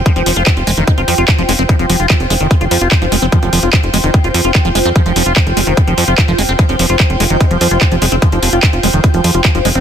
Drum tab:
HH |xxoxxxoxxxoxxxox|xxoxxxoxxxoxxxox|xxoxxxoxxxoxxxox|xxoxxxoxxxoxxxox|
CP |----x-------x---|----x-------x---|----x-------x---|----x-------x---|
BD |o---o---o---o---|o---o---o---o---|o---o---o---o---|o---o---o---o---|

HH |xxoxxxoxxxoxxxox|xxoxxxoxxxoxxxox|
CP |----x-------x---|----x-------x---|
BD |o---o---o---o---|o---o---o---o---|